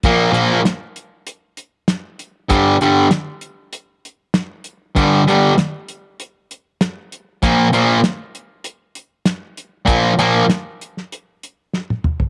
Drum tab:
HH |x-x-x-x-x-x-x-x-|x-x-x-x-x-x-x-x-|x-x-x-x-x-x-x-x-|x-x-x-x-x-x-x-x-|
SD |----o-------o---|----o-------o---|----o-------o---|----o-------o---|
T1 |----------------|----------------|----------------|----------------|
T2 |----------------|----------------|----------------|----------------|
FT |----------------|----------------|----------------|----------------|
BD |o---------------|o---------------|o---------------|o---------------|

HH |x-x-x-x-x-x-----|
SD |----o--o----o---|
T1 |-------------o--|
T2 |--------------o-|
FT |---------------o|
BD |o---------------|